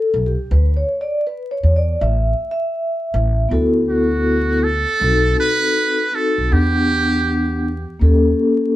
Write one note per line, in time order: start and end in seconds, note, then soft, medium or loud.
0.00 0.23 A4 medium
0.14 0.33 B1 medium
0.26 0.52 G4 medium
0.51 0.82 D2 loud
0.51 0.77 B4 medium
0.77 1.02 C#5 medium
1.01 1.24 D5 loud
1.27 1.52 B4 medium
1.51 1.77 C#5 loud
1.63 1.94 E2 medium
1.76 2.02 D5 medium
2.01 2.32 A1 loud
2.01 2.50 E5 loud
2.51 3.47 E5 loud
3.14 3.45 A1 loud
3.49 4.83 D2 loud
3.49 4.63 B3 medium
3.49 4.64 E4 medium
3.49 4.64 F#4 medium
3.49 4.65 A4 loud
3.89 4.65 F#4 medium
4.64 5.39 A4 loud
5.00 5.32 B1 loud
5.00 5.94 C4 medium
5.00 5.95 D#4 medium
5.00 5.96 F#4 medium
5.00 5.96 A4 medium
5.40 6.16 B4 loud
6.12 6.43 C4 medium
6.12 6.44 D#4 medium
6.12 6.45 F#4 medium
6.12 6.54 A4 loud
6.12 6.45 A4 medium
6.38 6.49 B1 medium
6.49 7.84 E2 loud
6.49 7.63 B3 medium
6.49 7.64 D4 medium
6.49 8.02 G4 loud
6.49 7.65 G4 medium
6.49 7.64 F#5 medium
7.99 8.32 D#2 medium
7.99 8.76 A#3 loud
7.99 8.76 C#4 medium
7.99 8.76 G4 loud
7.99 8.76 A4 loud